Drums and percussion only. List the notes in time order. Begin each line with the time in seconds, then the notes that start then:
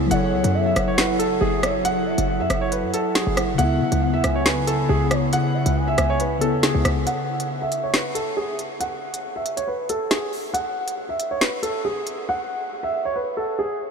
0.11 closed hi-hat
0.44 closed hi-hat
0.76 cross-stick, closed hi-hat
0.98 snare, closed hi-hat
1.20 closed hi-hat
1.63 cross-stick, closed hi-hat
1.85 closed hi-hat
2.18 closed hi-hat
2.50 cross-stick, closed hi-hat
2.72 closed hi-hat
2.94 closed hi-hat
3.15 snare, closed hi-hat
3.37 cross-stick, closed hi-hat
3.59 closed hi-hat
3.92 closed hi-hat
4.24 cross-stick, closed hi-hat
4.46 snare, closed hi-hat
4.67 closed hi-hat
5.11 cross-stick, closed hi-hat
5.33 closed hi-hat
5.66 closed hi-hat
5.98 cross-stick, closed hi-hat
6.20 closed hi-hat
6.41 closed hi-hat
6.63 snare, closed hi-hat
6.85 cross-stick, closed hi-hat
7.07 closed hi-hat
7.40 closed hi-hat
7.72 closed hi-hat
7.94 snare, closed hi-hat
8.15 closed hi-hat
8.59 closed hi-hat
8.81 closed hi-hat
9.14 closed hi-hat
9.46 closed hi-hat
9.57 closed hi-hat
9.89 closed hi-hat
10.11 snare, closed hi-hat
10.33 open hi-hat
10.54 closed hi-hat
10.88 closed hi-hat
11.20 closed hi-hat
11.41 snare, closed hi-hat
11.63 closed hi-hat
12.07 closed hi-hat